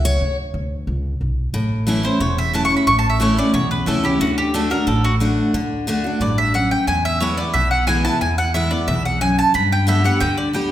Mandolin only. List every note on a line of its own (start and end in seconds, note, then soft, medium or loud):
2.05 2.20 C5 medium
2.21 2.37 C#5 medium
2.38 2.54 E5 medium
2.55 2.64 A5 medium
2.65 2.76 C#6 loud
2.77 2.87 B5 medium
2.87 2.98 C#6 loud
2.99 3.09 A5 medium
3.10 3.21 E5 medium
3.21 3.38 C#5 medium
3.38 3.54 D5 loud
3.54 3.71 C#5 medium
3.71 3.87 B4 medium
3.87 4.04 A4 medium
4.05 4.20 G4 medium
4.21 4.37 F#4 medium
4.38 4.54 G4 loud
4.54 4.71 A4 medium
4.71 4.87 A#4 medium
4.88 5.04 A4 medium
5.04 5.14 F#4 loud
6.22 6.38 D5 medium
6.38 6.54 E5 medium
6.55 6.71 F#5 medium
6.71 6.87 G5 medium
6.87 7.04 G#5 loud
7.05 7.21 E5 loud
7.21 7.37 C#5 medium
7.37 7.54 D5 medium
7.54 7.70 E5 medium
7.71 7.87 F#5 medium
7.87 8.04 G#5 medium
8.05 8.21 A5 loud
8.21 8.38 G#5 medium
8.38 8.54 F#5 loud
8.54 8.71 E5 medium
8.71 8.87 D5 medium
8.88 9.04 E5 medium
9.05 9.21 F#5 medium
9.21 9.38 G#5 loud
9.39 9.54 A5 loud
9.55 9.71 B5 medium
9.72 9.88 G5 loud
9.89 10.05 E5 medium
10.05 10.20 F#5 medium
10.20 10.37 G5 loud
10.38 10.48 D5 medium
10.54 10.71 G5 medium